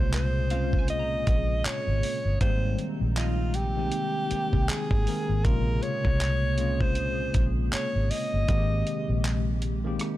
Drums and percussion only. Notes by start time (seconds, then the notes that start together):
0.13 clap, closed hi-hat
0.50 closed hi-hat
0.73 kick
0.88 closed hi-hat
1.27 kick, closed hi-hat
1.65 clap, closed hi-hat
2.03 open hi-hat
2.41 kick, closed hi-hat
2.79 closed hi-hat
3.16 clap, closed hi-hat
3.54 closed hi-hat
3.92 closed hi-hat
4.31 closed hi-hat
4.53 kick
4.69 clap, closed hi-hat
4.91 kick
5.07 open hi-hat
5.45 kick, closed hi-hat
5.83 closed hi-hat
6.05 kick
6.20 clap, closed hi-hat
6.58 closed hi-hat
6.81 kick
6.95 closed hi-hat
7.34 kick, closed hi-hat
7.73 clap, closed hi-hat
8.11 open hi-hat
8.48 kick, closed hi-hat
8.87 closed hi-hat
9.24 clap, closed hi-hat
9.62 closed hi-hat
9.99 cross-stick, closed hi-hat